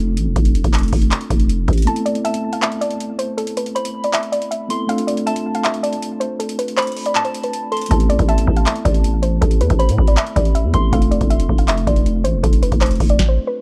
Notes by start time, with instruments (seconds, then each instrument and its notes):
Already playing: 808-style bass F1, tine electric piano A3 C4 D4 F4 A4
0.17 808-style bass A1, closed hi-hat
0.27 808-style bass F1
0.36 808-style bass F1, kick, closed hi-hat
0.45 closed hi-hat
0.55 closed hi-hat
0.64 808-style bass F1, kick, closed hi-hat
0.74 clap, closed hi-hat
0.79 closed hi-hat
0.83 closed hi-hat
0.88 closed hi-hat
0.93 808-style bass F1, kick, open hi-hat
1.02 closed hi-hat
1.11 clap, closed hi-hat
1.21 closed hi-hat
1.30 808-style bass F1, kick, closed hi-hat
1.40 closed hi-hat
1.49 closed hi-hat
1.68 808-style bass A1, kick, closed hi-hat
1.73 closed hi-hat
1.78 closed hi-hat
1.82 tine electric piano A3 B3, closed hi-hat
1.87 tine electric piano C4 E4 A4, synth pluck A5, closed hi-hat
1.96 closed hi-hat
2.06 synth pluck D5, closed hi-hat
2.15 closed hi-hat
2.25 synth pluck E5, synth bell A5, closed hi-hat
2.34 closed hi-hat
2.53 synth pluck F5, closed hi-hat
2.62 synth pluck E5, clap, closed hi-hat
2.72 closed hi-hat
2.81 synth pluck D5, closed hi-hat
2.91 closed hi-hat
3.00 closed hi-hat
3.19 synth pluck C5, closed hi-hat
3.38 synth pluck A4, closed hi-hat
3.47 closed hi-hat
3.57 synth pluck B4, closed hi-hat
3.66 closed hi-hat
3.75 synth pluck C5, synth bell B5, closed hi-hat
3.85 closed hi-hat
4.04 synth pluck D5, closed hi-hat
4.13 synth pluck E5, clap, closed hi-hat
4.23 closed hi-hat
4.32 synth pluck D5, closed hi-hat
4.42 closed hi-hat
4.51 synth pluck E5, closed hi-hat
4.69 tine electric piano A3 B3 C4 E4 A4, synth bell C6, closed hi-hat
4.87 tine electric piano A3 C4 D4 F4 A4, synth pluck F5, closed hi-hat
4.98 closed hi-hat
5.07 synth pluck D5, closed hi-hat
5.17 closed hi-hat
5.26 synth pluck E5, synth bell A5, closed hi-hat
5.36 closed hi-hat
5.55 synth pluck F5, closed hi-hat
5.64 synth pluck E5, clap, closed hi-hat
5.74 closed hi-hat
5.83 synth pluck D5, closed hi-hat
5.93 closed hi-hat
6.02 closed hi-hat
6.20 synth pluck C5, closed hi-hat
6.40 synth pluck A4, closed hi-hat
6.49 closed hi-hat
6.59 synth pluck B4, closed hi-hat
6.68 closed hi-hat
6.77 synth pluck C5, synth bell B5, clap, closed hi-hat
6.82 closed hi-hat
6.87 closed hi-hat
6.92 closed hi-hat
6.96 open hi-hat
7.06 synth pluck D5, closed hi-hat
7.15 synth bell A5, clap, closed hi-hat
7.25 synth pluck C5, closed hi-hat
7.34 closed hi-hat
7.43 synth pluck B4, closed hi-hat
7.53 closed hi-hat
7.72 synth pluck A4, synth bell C6, closed hi-hat
7.77 closed hi-hat
7.81 closed hi-hat
7.86 tine electric piano A3 B3, closed hi-hat
7.91 808-style bass A1, tine electric piano C4 E4 A4, synth pluck A5, kick, closed hi-hat
8.00 closed hi-hat
8.09 synth pluck D5, closed hi-hat
8.19 808-style bass A1, kick, closed hi-hat
8.29 synth pluck E5, synth bell A5, closed hi-hat
8.38 closed hi-hat
8.47 808-style bass A1, kick
8.56 synth pluck F5, closed hi-hat
8.66 synth pluck E5, clap, closed hi-hat
8.76 closed hi-hat
8.85 808-style bass A1, synth pluck D5, kick, closed hi-hat
8.94 closed hi-hat
9.04 closed hi-hat
9.22 synth pluck C5, closed hi-hat
9.41 808-style bass A1, synth pluck A4, kick, closed hi-hat
9.51 closed hi-hat
9.61 808-style bass E2, synth pluck B4, closed hi-hat
9.70 808-style bass A1, kick, closed hi-hat
9.79 synth pluck C5, synth bell B5, closed hi-hat
9.89 808-style bass A2, closed hi-hat
9.98 808-style bass G#1, kick
10.07 synth pluck D5, closed hi-hat
10.17 synth pluck E5, clap, closed hi-hat
10.27 closed hi-hat
10.36 808-style bass A1, synth pluck D5, kick, closed hi-hat
10.45 closed hi-hat
10.55 synth pluck E5, closed hi-hat
10.64 808-style bass E2
10.73 808-style bass A1, tine electric piano A3 B3 C4 E4 A4, synth bell C6, kick, closed hi-hat
10.91 808-style bass F1, tine electric piano A3 C4 D4 F4 A4, synth pluck F5, kick, closed hi-hat
11.02 closed hi-hat
11.11 synth pluck D5, closed hi-hat
11.21 808-style bass F1, kick, closed hi-hat
11.30 synth pluck E5, closed hi-hat
11.40 closed hi-hat
11.49 808-style bass F1, kick
11.58 synth pluck F5, closed hi-hat
11.68 synth pluck E5, clap, closed hi-hat
11.77 closed hi-hat
11.87 808-style bass F1, synth pluck D5, kick, closed hi-hat
11.96 closed hi-hat
12.06 closed hi-hat
12.24 808-style bass A1, synth pluck C5, closed hi-hat
12.34 808-style bass F1
12.43 808-style bass F1, synth pluck A4, kick, closed hi-hat
12.53 closed hi-hat
12.63 synth pluck B4, closed hi-hat
12.72 808-style bass F1, kick, closed hi-hat
12.81 synth pluck C5, clap, closed hi-hat
12.86 closed hi-hat
12.91 closed hi-hat
12.96 closed hi-hat
13.00 808-style bass F1, kick, open hi-hat
13.09 synth pluck D5, closed hi-hat
13.19 kick, snare
13.28 synth pluck C5
13.47 synth pluck B4